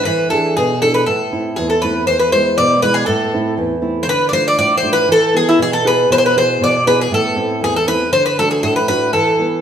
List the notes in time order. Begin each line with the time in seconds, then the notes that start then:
0.05 E3 B4
0.30 D4 E4 G#4 A4
0.57 B2 G#4
0.81 D4 E4 G#4 A4
0.94 B4
1.06 A2 A4
1.32 A3 C4 E4
1.56 E2 G#4
1.70 A4
1.82 A3 C4 E4 B4
2.07 E2 C5
2.19 B4
2.32 G#3 B3 E4 C5
2.58 B2 D5
2.82 G#3 B3 E4 B4
2.94 G#4
3.06 A2 A4
3.33 A3 C4 E4
3.57 E2
3.82 A3 C4 E4
4.03 C5
4.07 D3 B4
4.29 A3 D4 F4 D5
4.33 C5
4.48 D5
4.58 A2 D5
4.77 C5
4.83 A3 D4 F4
4.93 B4
5.09 E3 A4
5.34 B3 E4 G#4
5.49 E4
5.59 B2 G#4
5.73 A4
5.84 B3 E4 G#4 B4
6.10 B2 B4 C5
6.18 C5
6.26 B4
6.35 B3 E4 G#4 C5
6.61 B2 D5
6.86 B3 E4 G#4 B4
7.01 G#4
7.11 A2 A4
7.36 A3 C4 E4
7.61 E2 G#4
7.76 A4
7.86 A3 C4 E4 B4
8.12 D3 C5
8.26 B4
8.38 A3 D4 F#4 A4
8.51 G#4
8.63 A2 A4
8.76 B4
8.88 A3 D4 F#4 B4
9.13 E3 A4
9.39 B3 E4 B4